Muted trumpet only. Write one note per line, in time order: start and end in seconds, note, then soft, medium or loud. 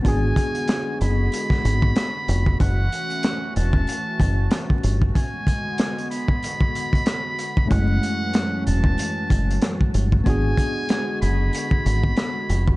0.06 0.97 G#5 loud
1.01 2.56 B5 medium
2.60 3.52 F#5 loud
3.56 4.66 A5 loud
5.15 6.07 G#5 loud
6.11 7.66 B5 medium
7.70 8.62 F#5 loud
8.66 9.76 A5 loud
10.25 11.17 G#5 loud
11.22 12.76 B5 medium